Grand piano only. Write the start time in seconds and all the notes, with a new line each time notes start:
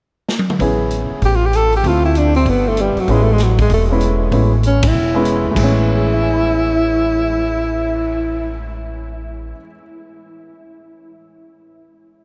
0.60 B3 C#4 E4 G#4
1.85 A3 C4 E4 F4
3.09 G#3 B3 C#4 E4
3.90 G#3 B3 C#4 E4
4.32 G#3 B3 C#4 E4
5.14 G#3 B3 C#4 E4
5.51 A2 E3
5.58 G#3 B3
5.64 C#4
5.88 E4
5.96 G#4
6.04 B4
6.13 E5
6.23 G#5
6.33 B5
6.45 E6